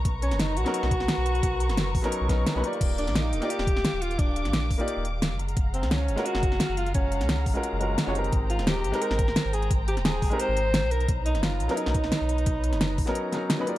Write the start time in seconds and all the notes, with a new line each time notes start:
Already playing: A#4 B4 A#5 C#6
0.05 B1, kick, closed hi-hat
0.22 C#4, closed hi-hat
0.31 F#1, snare, closed hi-hat
0.40 D#4, snare, closed hi-hat
0.57 B1 F#4, closed hi-hat
0.64 F#3 B3 C#4 D#4 A#4, snare, closed hi-hat
0.74 closed hi-hat
0.83 B1, snare
0.91 kick, closed hi-hat
1.00 snare
1.08 snare, closed hi-hat
1.18 B1
1.26 closed hi-hat
1.35 closed hi-hat
1.43 B1, kick, closed hi-hat
1.60 closed hi-hat
1.69 F#1, snare, closed hi-hat
1.77 snare, closed hi-hat
1.95 B1, kick, open hi-hat
2.02 F#3 B3 C#4 D#4 A#4, snare, closed hi-hat
2.12 closed hi-hat
2.21 B1
2.28 F#3 B3 C#4 D#4 A#4, kick, snare, closed hi-hat
2.47 snare, closed hi-hat
2.54 B1 F#3 B3 C#4 D#4 B4
2.60 A#3 D#4 F4, closed hi-hat
2.65 G4 D5
2.73 closed hi-hat
2.81 D#1 G4 F5 D6, kick, closed hi-hat, crash
2.98 D4, closed hi-hat
3.07 A#1, snare, closed hi-hat
3.15 D#4, snare, closed hi-hat
3.33 D#1, closed hi-hat
3.40 A#3 D#4 F4 G4 D5, snare, closed hi-hat
3.50 G4, closed hi-hat
3.59 D#1, snare
3.67 kick, closed hi-hat
3.77 snare
3.85 snare, closed hi-hat
3.93 D#1
4.02 F4, closed hi-hat
4.11 closed hi-hat
4.19 D#1 D4, kick, closed hi-hat
4.36 closed hi-hat
4.45 A#1, snare, closed hi-hat
4.53 snare, closed hi-hat
4.71 D#1, kick, open hi-hat
4.78 A#3 D#4 F4 G4 D5, closed hi-hat
4.88 closed hi-hat
4.97 D#1
5.05 closed hi-hat
5.22 snare, closed hi-hat
5.31 F#1
5.39 G#3 F5 F#5 A#5, closed hi-hat
5.48 closed hi-hat
5.57 F#1, kick, closed hi-hat
5.74 C4, closed hi-hat
5.83 C#2, snare, closed hi-hat
5.91 C#4, snare, closed hi-hat
6.08 F#1, closed hi-hat
6.16 G#3 C#4 F4 F#4 A#4, snare, closed hi-hat
6.25 F#4, closed hi-hat
6.35 F#1, snare
6.43 kick, closed hi-hat
6.52 snare
6.60 snare, closed hi-hat
6.69 F#1
6.77 F4, closed hi-hat
6.86 closed hi-hat
6.94 F#1 C#4, kick, closed hi-hat
7.12 closed hi-hat
7.21 C#2, snare, closed hi-hat
7.29 snare, closed hi-hat
7.46 F#1, kick, open hi-hat
7.54 G#3 C#4 F4 F#4 A#4, closed hi-hat
7.63 closed hi-hat
7.73 F#1
7.79 G#3 C#4 F4 F#4 A#4, closed hi-hat
7.98 snare, closed hi-hat
8.06 F#1 G#3 C#4 F4 F#4 C#5
8.12 G#3 C4 D#4, closed hi-hat
8.17 G4 A#4
8.24 closed hi-hat
8.32 G#1 C5 G5, kick, closed hi-hat
8.50 F4, closed hi-hat
8.59 D#1, snare, closed hi-hat
8.67 G4, snare, closed hi-hat
8.84 G#1, closed hi-hat
8.92 G#3 C4 D#4 G4 A#4, snare, closed hi-hat
9.02 A#4, closed hi-hat
9.11 G#1, snare
9.19 kick, closed hi-hat
9.28 snare
9.36 snare, closed hi-hat
9.45 G#1
9.53 G#4, closed hi-hat
9.62 closed hi-hat
9.71 G#1, kick, closed hi-hat
9.88 G4, closed hi-hat
9.97 D#1, snare, closed hi-hat
10.05 G#4, snare, closed hi-hat
10.22 G#1, kick, open hi-hat
10.30 G#3 C4 D#4 G4 A#4, closed hi-hat
10.40 C5, closed hi-hat
10.49 G#1
10.57 closed hi-hat
10.74 snare, closed hi-hat
10.83 B1
10.91 D#4 A#4 B4 C#5, closed hi-hat
11.00 closed hi-hat
11.09 B1, kick, closed hi-hat
11.26 D#4, closed hi-hat
11.35 F#1, snare, closed hi-hat
11.43 F4, snare, closed hi-hat
11.60 B1, closed hi-hat
11.68 F#3 B3 C#4 D#4 A#4, snare, closed hi-hat
11.77 D#4, closed hi-hat
11.86 B1, snare
11.94 kick, closed hi-hat
12.04 snare
12.12 snare, closed hi-hat
12.21 B1
12.29 closed hi-hat
12.38 closed hi-hat
12.46 B1, kick, closed hi-hat
12.64 closed hi-hat
12.73 F#1, snare, closed hi-hat
12.81 snare, closed hi-hat
12.98 B1, kick, open hi-hat
13.06 F#3 B3 C#4 D#4 A#4, snare, closed hi-hat
13.15 closed hi-hat
13.31 F#3 B3 C#4 D#4 A#4, snare, closed hi-hat
13.50 snare, closed hi-hat
13.58 F#3 B3 C#4 D#4 B4
13.66 A#3 D#4 F4 G4 D5, closed hi-hat